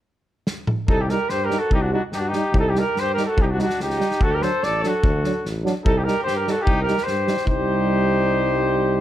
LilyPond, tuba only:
\new Staff \with { instrumentName = "Tuba" } { \clef bass \time 2/4 \tempo 4 = 146 r2 | c,4 g,4 | c,4 g,4 | c,4 g,4 |
c,4 des,4 | d,4 a,,4 | d,4 a,,4 | c,4 g,4 |
c,4 g,4 | c,2~ | c,2 | }